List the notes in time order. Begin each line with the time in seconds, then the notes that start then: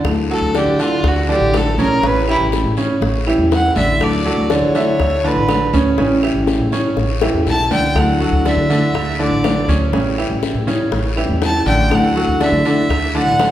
0.04 D2 D3 F#3 A3 D4 E4, high bongo, long guiro, claves
0.30 F#3 F#4 A4
0.41 D2
0.55 D3 D4 G4 D5, high bongo, short guiro
0.66 D3
0.78 D3 F#3 A3 D4 E4 F4 D5, short guiro
1.03 D2, muted steel-string acoustic guitar stroke, high bongo, long guiro, claves
1.07 F#4
1.28 D3 F#3 A3 D4 E4 G4 D5
1.40 A1
1.53 F#3 A3 D4 E4, high bongo, low bongo, short guiro, claves
1.57 A4
1.77 B1 C#3 C#4 A#4 C#5, short guiro
2.02 A1 C#3 E3 G3 C#4 E4 B4 C#5, high bongo, long guiro
2.28 E3 E4 G4, high bongo, claves
2.40 A1
2.52 high bongo, short guiro
2.64 A2
2.77 C#3 G3 C#4 E4 C#5, high bongo, short guiro
3.01 A1, muted steel-string acoustic guitar stroke, high bongo, long guiro
3.26 E3 G3 C#4 E4 G4, claves
3.38 E2
3.51 E3 G3 C#4 E4 F#5, high bongo, low bongo, short guiro
3.76 A1 D3 D5 E5, high bongo, short guiro
4.00 D2 D3 F#3 A3 D4 E4 D5, high bongo, long guiro, claves
4.25 F#3 F#4 A4
4.37 D2
4.50 D3 D4 C#5 D5, high bongo, short guiro
4.62 D3
4.75 D3 F#3 A3 D4 E4 E5, short guiro
4.99 D2, muted steel-string acoustic guitar stroke, high bongo, long guiro, claves
5.24 D3 F#3 A3 D4 E4 B4 D5
5.36 A1
5.48 F#3 A3 D4 E4, high bongo, low bongo, short guiro, claves
5.73 D2 C#3 C#4 C#5, short guiro
5.98 A1 C#3 E3 G3 C#4 E4 C#5, high bongo, long guiro
6.23 E3 E4 G4, high bongo, claves
6.35 A1
6.47 high bongo, short guiro
6.59 A2
6.71 C#3 G3 C#4 E4 C#5, high bongo, short guiro
6.96 A1, muted steel-string acoustic guitar stroke, high bongo, long guiro
7.21 E3 G3 C#4 E4 G4, high bongo, claves
7.33 E2
7.46 B1 E3 G3 C#4 E4, low bongo, short guiro
7.50 A5
7.70 C#2 D3 D5 G5, low bongo, short guiro
7.95 D2 D3 F#3 A3 D4 E4 F#5, high bongo, long guiro, claves
8.21 F#3 F#4 A4
8.32 D2
8.45 D3 D4 D5 E5, high bongo, short guiro
8.57 D3
8.69 D3 F#3 A3 D4 E4 D5, short guiro
8.94 D2, muted steel-string acoustic guitar stroke, high bongo, long guiro, claves
9.19 D3 F#3 A3 D4 E4 D5
9.31 A1
9.44 F#3 A3 D4 E4, high bongo, low bongo, short guiro, claves
9.68 D2 C#3 C#4 C#5, short guiro
9.92 A1 C#3 E3 G3 C#4 E4 C#5, high bongo, long guiro
10.18 E3 E4 G4, high bongo, claves
10.30 A1
10.43 high bongo, short guiro
10.54 A2
10.67 C#3 G3 C#4 E4 C#5, high bongo, short guiro
10.92 A1, muted steel-string acoustic guitar stroke, high bongo, long guiro
11.16 E3 G3 C#4 E4 G4, claves
11.29 E2
11.41 E3 G3 C#4 E4 A5, high bongo, low bongo, short guiro
11.66 A1 D3 D5 G5, high bongo, short guiro
11.90 D2 D3 F#3 A3 D4 E4, high bongo, long guiro, claves
11.94 F#5
12.16 F#3 F#4 A4
12.28 D2
12.40 D3 D4 D5 E5, high bongo, short guiro
12.52 D3
12.65 D3 F#3 A3 D4 E4 D5, short guiro
12.89 D2, muted steel-string acoustic guitar stroke, high bongo, long guiro, claves
13.14 D3 F#3 A3 D4 E4 D5 F#5
13.27 A1
13.39 F#3 A3 D4, high bongo, low bongo, short guiro, claves